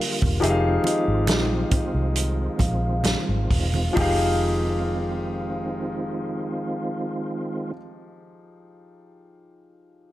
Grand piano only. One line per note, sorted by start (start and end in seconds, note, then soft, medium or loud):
0.00 0.37 G3 medium
0.00 0.38 G4 medium
0.00 0.42 A#4 medium
0.00 0.39 D5 medium
0.00 0.39 F5 medium
0.40 3.92 F3 medium
0.40 3.92 D#4 medium
0.40 3.93 G4 medium
0.40 3.93 G#4 medium
0.40 0.50 E5 medium
0.50 3.97 F5 medium
3.93 7.69 F3 medium
3.93 7.71 D#4 medium
3.93 7.73 G4 medium
3.99 7.75 G#4 medium
3.99 7.77 F5 medium